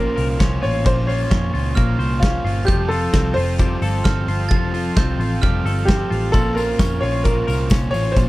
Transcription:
Already playing: picked electric bass A#1, clean electric guitar A#2 F3 C#4 F4, overdriven electric guitar A#3 C#4 F4 C5, upright piano A#4, glockenspiel C6
0.16 picked electric bass C2, overdriven electric guitar A#3 C#4 F4 C5, clean electric guitar A#4, open hi-hat
0.38 picked electric bass C2, overdriven electric guitar A#2 F3 A#3 C#4 F4 C5, kick, snare, closed hi-hat
0.60 overdriven electric guitar A#3 C#4 F4 C5, upright piano C#5, open hi-hat
0.65 picked electric bass A1
0.85 picked electric bass A#1, overdriven electric guitar A#2 F3 A#3 C#4 F4 C5, upright piano C5, kick, closed hi-hat
1.07 overdriven electric guitar A#3 C#4 F4 C5, upright piano C#5, open hi-hat
1.30 picked electric bass F2, overdriven electric guitar A#2 F3 A#3 C#4 F4 C5, glockenspiel C#6, kick, snare, closed hi-hat
1.54 picked electric bass C#2, overdriven electric guitar A#3 C#4 F4 C5, open hi-hat
1.75 picked electric bass A#1, overdriven electric guitar A#3 C#4 F4 C5, glockenspiel F6, kick, closed hi-hat
1.99 picked electric bass C2, overdriven electric guitar A#3 C#4 F4 C5, open hi-hat
2.20 overdriven electric guitar A#2 F3 A#3, upright piano F4, kick, snare, closed hi-hat
2.24 overdriven electric guitar C#4 F4 C5
2.44 picked electric bass G1, overdriven electric guitar A#3 C#4 F4 C5, open hi-hat
2.65 picked electric bass F1, overdriven electric guitar F3 G3 C4, upright piano G4, glockenspiel G6, kick, closed hi-hat
2.69 overdriven electric guitar F4 A4
2.89 overdriven electric guitar F4 A4, upright piano A4, open hi-hat
2.94 overdriven electric guitar C4
3.14 picked electric bass C2, overdriven electric guitar F3 G3 C4 F4 A4, kick, snare, closed hi-hat
3.34 picked electric bass F1, overdriven electric guitar A4, upright piano C5, open hi-hat
3.38 overdriven electric guitar C4 F4
3.58 overdriven electric guitar G3 C4 F4 A4, kick, closed hi-hat
3.82 picked electric bass G1, overdriven electric guitar C4 F4 A4, open hi-hat
4.04 picked electric bass G1, overdriven electric guitar F3 G3 C4 F4 A4, glockenspiel F6, kick, snare, closed hi-hat
4.27 picked electric bass G1, overdriven electric guitar C4 F4 A4, open hi-hat
4.49 picked electric bass F1, overdriven electric guitar F3 G3 C4 F4 A4, glockenspiel A6, kick, closed hi-hat
4.74 overdriven electric guitar C4 F4 A4, open hi-hat
4.96 picked electric bass C2, overdriven electric guitar F3 G3 C4 F4 A4, glockenspiel G6, kick, snare, closed hi-hat
5.18 picked electric bass A1, overdriven electric guitar C4 F4 A4, open hi-hat
5.41 picked electric bass F1, overdriven electric guitar G3 C4 F4 A4, glockenspiel F6, kick, closed hi-hat
5.64 picked electric bass G1, overdriven electric guitar C4 F4 A4, open hi-hat
5.85 overdriven electric guitar F3 G3 C4, upright piano G4, kick, snare, closed hi-hat
5.90 overdriven electric guitar F4 A4
6.11 picked electric bass A1, overdriven electric guitar C4 F4 A4, open hi-hat
6.32 picked electric bass A#1, overdriven electric guitar A#2 F3 A#3 C#4 F4 C5, upright piano A4, glockenspiel C6, kick, closed hi-hat, tambourine
6.55 overdriven electric guitar C#4 F4 C5, upright piano A#4, open hi-hat, tambourine
6.59 overdriven electric guitar A#3
6.79 picked electric bass F2, overdriven electric guitar A#2 F3 A#3 C#4 F4 C5, glockenspiel C#6, kick, snare, closed hi-hat, tambourine
7.01 picked electric bass A#1, overdriven electric guitar C#4 F4 C5, upright piano C#5, open hi-hat
7.05 overdriven electric guitar A#3
7.24 overdriven electric guitar A#3 C#4 F4 C5, upright piano A#4, kick, closed hi-hat, tambourine
7.47 picked electric bass C2, overdriven electric guitar A#3 C#4 F4 C5, clean electric guitar A#4, open hi-hat, tambourine
7.70 picked electric bass C2, overdriven electric guitar A#2 F3 A#3 C#4 F4 C5, kick, snare, closed hi-hat, tambourine
7.91 picked electric bass A1, overdriven electric guitar C5, upright piano C#5, open hi-hat, tambourine
7.95 overdriven electric guitar A#3 C#4 F4
8.12 upright piano C5
8.16 picked electric bass A#1, overdriven electric guitar A#2 F3 A#3 C#4 F4 C5, kick, closed hi-hat, tambourine

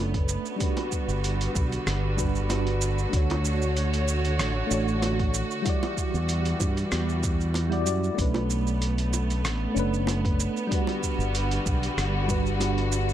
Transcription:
Already playing: fingered electric bass F#1, string section A3 B3, synth keys A3 C#4 D4 B4
0.14 kick, closed hi-hat
0.29 shaker
0.46 shaker
0.56 string section D3 G3 F#4, synth keys G3 D4
0.60 synth keys F#4 B4, kick, closed hi-hat, shaker
0.77 closed hi-hat, high bongo
0.92 kick, shaker
1.08 fingered electric bass G1, shaker
1.24 closed hi-hat, shaker
1.41 closed hi-hat, shaker
1.55 fingered electric bass B1, kick, shaker
1.72 closed hi-hat, shaker
1.87 fingered electric bass G1, cross-stick, closed hi-hat, shaker
2.16 synth keys G3 D4 F#4 B4, kick, shaker
2.35 shaker
2.48 synth keys G3 D4 F#4 B4, closed hi-hat, high bongo, shaker
2.67 closed hi-hat
2.81 shaker
2.98 shaker
3.09 synth keys A3 D4
3.13 fingered electric bass D2, string section A3 C#5, synth keys F#4 C#5, kick, closed hi-hat, shaker
3.30 closed hi-hat, high bongo
3.45 shaker
3.62 shaker
3.77 closed hi-hat, shaker
3.94 closed hi-hat, shaker
4.08 shaker
4.25 closed hi-hat, shaker
4.39 fingered electric bass A1, cross-stick, closed hi-hat, shaker
4.67 synth keys A3 D4
4.71 fingered electric bass A1, synth keys F#4 C#5, shaker
4.88 shaker
5.02 closed hi-hat, high bongo, shaker
5.20 kick, closed hi-hat
5.34 shaker
5.51 shaker
5.62 string section E3 G3, synth keys G3 E4, kick, closed hi-hat, shaker
5.67 synth keys F#4 D5
5.83 closed hi-hat, high bongo
5.97 kick, shaker
6.14 fingered electric bass E2, shaker
6.29 closed hi-hat, shaker
6.45 closed hi-hat, shaker
6.60 fingered electric bass G2, kick, high bongo, shaker
6.77 closed hi-hat, shaker
6.92 fingered electric bass E2, cross-stick, closed hi-hat, shaker
7.09 shaker
7.23 kick, shaker
7.41 shaker
7.54 closed hi-hat, high bongo, shaker
7.70 synth keys G3 E4 F#4 D5, closed hi-hat
7.84 fingered electric bass F#2, synth keys G3 E4 F#4 D5, shaker
8.04 shaker
8.14 synth keys A3 C#4, string section A3 B3
8.18 fingered electric bass B1, synth keys D4 B4, kick, closed hi-hat, shaker
8.34 closed hi-hat, high bongo
8.50 shaker
8.67 shaker
8.82 closed hi-hat, shaker
8.98 closed hi-hat, shaker
9.13 high bongo, shaker
9.30 closed hi-hat, shaker
9.44 fingered electric bass A1, cross-stick, closed hi-hat, shaker
9.72 synth keys A3 C#4
9.76 fingered electric bass F#1, synth keys D4 B4, shaker
9.94 shaker
10.07 closed hi-hat, high bongo, shaker
10.25 kick, closed hi-hat
10.40 shaker
10.57 shaker
10.67 synth keys G3 D4, string section G3 F#4
10.71 string section D3, synth keys F#4 B4, kick, closed hi-hat, shaker
10.87 closed hi-hat, high bongo
11.03 kick, shaker
11.19 fingered electric bass G1, shaker
11.35 closed hi-hat, shaker
11.51 closed hi-hat, shaker
11.66 fingered electric bass B1, kick, shaker
11.83 closed hi-hat, shaker
11.97 fingered electric bass G1, cross-stick, closed hi-hat, shaker
12.27 synth keys G3 D4 F#4 B4, kick, shaker
12.46 shaker
12.58 synth keys G3 D4 F#4 B4, closed hi-hat, high bongo, shaker
12.78 closed hi-hat
12.92 shaker
13.09 shaker

